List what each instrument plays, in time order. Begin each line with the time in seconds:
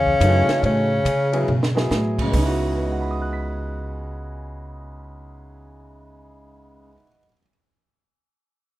Already playing: upright bass E2, bass clarinet C#3, tenor saxophone C#4
0.06 kick
0.20 upright bass F#2, grand piano E3 A3 D#4 F#4, hi-hat pedal, ride
0.48 muted upright bass stroke, snare, ride
0.63 upright bass A2, bass clarinet C#3, tenor saxophone C#4, ride
1.05 upright bass C#3, hi-hat pedal, ride
1.33 grand piano F#3 B3 E4 G#4, ride
1.48 upright bass B2, floor tom
1.63 snare
1.75 grand piano F#3 B3 E4 G#4, snare
1.91 upright bass A2, snare, hi-hat pedal
2.19 grand piano C#3, kick, crash
2.26 grand piano G#3
2.31 upright bass C#2, grand piano B3, kick, open hi-hat
2.36 grand piano D#4
2.41 grand piano E4
2.46 grand piano F#4
2.76 grand piano B4
2.83 grand piano D#5
2.92 grand piano F#5
3.01 grand piano B5
3.11 grand piano D#6
3.22 grand piano F#6
3.33 grand piano B6